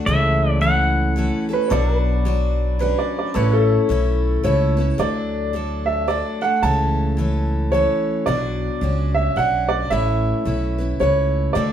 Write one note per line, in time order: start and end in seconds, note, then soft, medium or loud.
0.00 0.10 D5 medium
0.06 1.28 C#2 medium
0.06 0.61 C#3 medium
0.06 0.60 E3 medium
0.06 0.61 A3 medium
0.06 0.62 C#4 medium
0.06 0.62 A4 medium
0.06 0.50 E5 medium
0.50 0.61 D5 medium
0.61 1.15 E3 medium
0.61 1.16 A3 medium
0.61 1.17 C#4 medium
0.61 1.17 A4 medium
0.61 1.45 F#5 medium
1.16 1.49 E3 medium
1.16 1.50 A3 medium
1.16 1.49 C#4 medium
1.16 1.47 A4 medium
1.49 1.71 A3 soft
1.49 1.71 C#4 soft
1.49 1.70 A4 medium
1.53 1.70 B4 medium
1.67 2.25 B2 medium
1.67 1.71 C#5 medium
1.71 2.93 B1 medium
1.71 2.24 F#3 medium
1.71 2.25 D4 medium
1.71 2.26 F#4 medium
1.71 1.96 A4 medium
1.71 2.77 D5 medium
1.71 3.34 F#5 medium
1.96 3.33 B4 medium
2.25 2.78 F#3 medium
2.25 2.79 D4 medium
2.25 2.81 F#4 medium
2.79 3.34 F#3 medium
2.79 3.34 C#4 medium
2.79 3.35 D4 medium
2.79 3.36 F#4 medium
2.79 2.98 B4 medium
2.99 3.16 D5 medium
3.19 3.35 D5 medium
3.34 3.76 A1 medium
3.34 3.88 A3 medium
3.34 3.89 C#4 medium
3.34 3.90 E4 medium
3.34 4.97 A4 medium
3.34 3.53 B4 medium
3.34 3.90 B4 medium
3.34 4.98 C#5 medium
3.34 3.62 F#5 medium
3.53 4.84 A4 medium
3.62 4.98 E5 medium
3.89 4.36 B1 medium
3.89 4.42 A3 medium
3.89 4.43 C#4 medium
3.89 4.44 E4 medium
3.89 4.45 B4 medium
4.43 4.91 C#2 medium
4.43 4.77 A3 medium
4.43 4.77 C#4 medium
4.43 4.77 E4 medium
4.43 4.76 B4 medium
4.43 5.00 C#5 medium
4.77 4.99 C#4 soft
4.77 4.99 E4 soft
4.77 4.98 B4 medium
4.98 6.21 D2 medium
4.98 5.53 D3 medium
4.98 5.52 F#3 medium
4.98 5.54 A3 medium
4.98 5.54 D4 medium
4.98 5.56 A4 medium
4.98 5.90 D5 medium
5.53 6.06 F#3 medium
5.53 6.07 A3 medium
5.53 6.08 D4 medium
5.53 6.09 A4 medium
5.86 6.08 E5 medium
6.08 6.41 F#3 soft
6.08 6.42 A3 medium
6.08 6.41 D4 medium
6.08 6.40 A4 medium
6.08 6.39 D5 medium
6.41 6.63 A3 soft
6.41 6.63 D4 soft
6.41 6.63 A4 soft
6.41 6.62 F#5 medium
6.63 7.85 C#2 medium
6.63 7.18 C#3 medium
6.63 7.16 E3 medium
6.63 7.17 A3 medium
6.63 7.19 C#4 medium
6.63 7.19 A4 medium
6.63 7.75 A5 medium
7.17 7.71 E3 medium
7.17 7.72 A3 medium
7.17 7.74 C#4 medium
7.17 7.73 A4 medium
7.72 8.27 E3 medium
7.72 8.27 A3 medium
7.72 8.29 C#4 medium
7.72 8.28 A4 medium
7.72 8.28 C#5 medium
8.26 8.67 B1 medium
8.26 8.81 B2 medium
8.26 8.80 F#3 medium
8.26 8.81 D4 medium
8.26 8.82 F#4 medium
8.26 9.10 D5 medium
8.81 9.28 C#2 medium
8.81 9.35 F#3 medium
8.81 9.37 C#4 medium
8.81 9.36 D4 medium
8.81 9.37 F#4 medium
9.14 9.37 E5 medium
9.36 9.83 B1 medium
9.36 9.90 F#3 soft
9.36 9.90 C#4 medium
9.36 9.91 D4 medium
9.36 9.92 F#4 medium
9.36 9.71 F#5 medium
9.69 9.91 D5 medium
9.90 10.31 A1 medium
9.90 10.45 A3 medium
9.90 10.45 C#4 medium
9.90 10.46 E4 medium
9.90 10.46 B4 medium
9.90 11.03 E5 medium
10.45 10.92 B1 medium
10.45 10.79 A3 medium
10.45 10.79 C#4 medium
10.45 10.79 E4 medium
10.45 10.77 B4 medium
10.78 11.00 C#4 soft
10.78 11.00 E4 soft
10.78 11.00 B4 soft
11.00 11.47 C#2 medium
11.00 11.54 A3 soft
11.00 11.55 C#4 medium
11.00 11.56 E4 medium
11.00 11.56 B4 medium
11.00 11.57 C#5 medium
11.53 11.73 D2 medium
11.53 11.73 D3 medium
11.53 11.73 A3 medium
11.53 11.73 D4 medium
11.53 11.73 F#4 medium
11.53 11.73 A4 medium
11.53 11.73 D5 medium